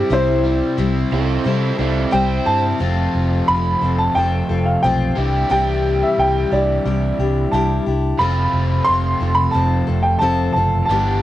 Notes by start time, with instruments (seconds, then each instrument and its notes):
Already playing: overdriven electric guitar G3 C4, steel-string acoustic guitar C4 E4 C5, grand piano G4
0.10 fingered electric bass C2, steel-string acoustic guitar C3 G3 C4 E4 C5, grand piano E4 C5
0.43 overdriven electric guitar G3, steel-string acoustic guitar C4 E4 C5
0.78 fingered electric bass C2, steel-string acoustic guitar C3 G3 C4 E4 C5
1.11 fingered electric bass C2, steel-string acoustic guitar C4 E4 C5, electric slide guitar A4
1.44 fingered electric bass C3, steel-string acoustic guitar G3 C4 E4 C5, electric slide guitar A4
1.78 fingered electric bass C2, overdriven electric guitar G3, steel-string acoustic guitar C4 E4 C5, electric slide guitar A4
2.11 fingered electric bass C2, steel-string acoustic guitar C3 G3 C4 E4 C5, grand piano G5
2.46 fingered electric bass G2, overdriven electric guitar C4, grand piano A5
2.79 fingered electric bass F1, overdriven electric guitar F2 C3 A3, steel-string acoustic guitar F3 C4 F4 A4
3.15 fingered electric bass F1
3.48 fingered electric bass F1, grand piano B5
3.81 fingered electric bass F1, steel-string acoustic guitar C4 F4 A4
3.98 grand piano A5
4.15 fingered electric bass F1, steel-string acoustic guitar F3 C4 F4 A4, grand piano G5
4.49 fingered electric bass F1, steel-string acoustic guitar C4 F4 A4
4.65 grand piano F5
4.83 fingered electric bass B1, steel-string acoustic guitar F3 C4 F4 A4, grand piano G5
5.15 fingered electric bass C2, overdriven electric guitar C3 E3 G3 C4, steel-string acoustic guitar D4 E4 G4
5.49 fingered electric bass C2, steel-string acoustic guitar C3 G3 D4 E4 G4, grand piano G5
6.03 grand piano E5
6.18 fingered electric bass C2, grand piano G5
6.51 fingered electric bass C2, steel-string acoustic guitar D4 E4 G4, grand piano D5
6.85 fingered electric bass C2, steel-string acoustic guitar G3 D4 E4 G4
7.19 fingered electric bass C2, steel-string acoustic guitar D4 E4 G4
7.52 fingered electric bass C2, steel-string acoustic guitar C3 G3 D4 E4 G4, grand piano A5
7.86 fingered electric bass C2, steel-string acoustic guitar D4 E4 G4
8.19 fingered electric bass F1, overdriven electric guitar F2 C3 A3, steel-string acoustic guitar F3 C4 F4 A4, grand piano B5
8.53 fingered electric bass F1
8.84 fingered electric bass F1, grand piano C6
9.20 fingered electric bass F1, steel-string acoustic guitar C4 F4 A4
9.35 grand piano B5
9.51 fingered electric bass F1, steel-string acoustic guitar F3 C4 F4, grand piano A5
9.56 steel-string acoustic guitar A4
9.87 fingered electric bass F1, steel-string acoustic guitar C4 F4 A4
10.03 grand piano G5
10.19 fingered electric bass F1, steel-string acoustic guitar F3 C4 F4, grand piano A5
10.23 steel-string acoustic guitar A4
10.53 fingered electric bass F#1, steel-string acoustic guitar A4, grand piano A5
10.58 steel-string acoustic guitar C4 F4
10.86 fingered electric bass G1, overdriven electric guitar D3, grand piano A5
10.90 steel-string acoustic guitar G2 E3 G3 B3 D4 G4